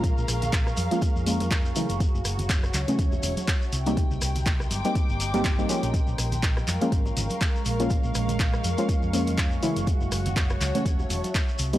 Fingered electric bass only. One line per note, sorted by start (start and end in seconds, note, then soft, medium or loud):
0.00 0.11 A#1 medium
0.18 0.25 A#1 medium
0.28 0.72 A#1 loud
0.78 0.87 F2 medium
1.16 1.71 F2 medium
1.90 2.06 F#1 medium
2.14 2.22 F#1 medium
2.25 2.69 F#1 loud
2.74 2.84 C#2 medium
2.99 3.17 E1 medium
3.23 3.33 E1 medium
3.73 4.04 C2 medium
4.11 4.19 C2 medium
4.22 4.66 C2 medium
4.71 4.81 G1 medium
5.09 5.64 G1 medium
5.83 6.00 A#1 medium
6.08 6.15 A#1 medium
6.18 6.63 A#1 loud
6.68 6.77 F2 medium
6.92 7.10 G#1 medium
7.17 7.27 G#1 medium
7.66 7.98 A#1 medium
8.04 8.12 A#1 medium
8.15 8.59 A#1 loud
8.64 8.74 F2 loud
9.03 9.58 F2 medium
9.77 9.93 F#1 medium
10.01 10.09 F#1 medium
10.12 10.56 F#1 loud
10.61 10.71 C#2 medium
10.86 11.04 E1 medium
11.10 11.20 E1 medium
11.59 11.78 C2 medium